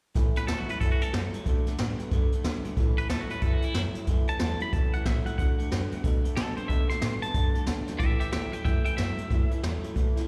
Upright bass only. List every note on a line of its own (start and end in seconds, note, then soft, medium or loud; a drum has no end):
0.16 0.30 A1 loud
0.49 0.63 D2 medium
0.69 muted upright bass stroke medium
0.81 0.95 F#2 medium
1.01 muted upright bass stroke medium
1.13 1.28 F#2 medium
1.34 muted upright bass stroke medium
1.46 1.60 D2 medium
1.67 muted upright bass stroke medium
1.79 1.93 A2 medium
2.00 muted upright bass stroke medium
2.12 2.26 F#2 medium
2.33 muted upright bass stroke medium
2.44 2.58 D2 medium
2.65 muted upright bass stroke medium
2.77 2.91 A1 loud
3.10 3.24 D2 loud
3.42 3.56 F#2 medium
3.63 muted upright bass stroke medium
3.75 3.89 F#2 medium
3.96 muted upright bass stroke medium
4.07 4.21 F#2 medium
4.28 muted upright bass stroke medium
4.41 4.55 E2 loud
4.61 muted upright bass stroke medium
4.73 4.87 D2 medium
4.94 muted upright bass stroke medium
5.06 5.20 A1 medium
5.27 muted upright bass stroke medium
5.39 5.53 D2 medium
5.60 muted upright bass stroke medium
5.72 5.85 F#2 loud
5.92 muted upright bass stroke medium
6.04 6.18 B2 medium
6.25 muted upright bass stroke medium
6.37 6.51 B2 medium
6.57 muted upright bass stroke medium
6.69 6.83 B2 loud
6.90 muted upright bass stroke medium
7.02 7.16 A2 medium
7.22 muted upright bass stroke medium
7.34 7.48 F#2 medium
7.55 muted upright bass stroke medium
7.68 7.81 D2 loud
7.88 muted upright bass stroke medium
8.00 8.14 A1 loud
8.33 8.47 D2 medium
8.54 muted upright bass stroke medium
8.65 8.79 F#2 medium
8.86 muted upright bass stroke medium
8.99 9.12 F#2 medium
9.19 muted upright bass stroke medium
9.31 9.45 F#2 loud
9.52 muted upright bass stroke medium
9.64 9.78 E2 loud
9.85 muted upright bass stroke medium
9.96 10.10 D2 medium
10.17 muted upright bass stroke medium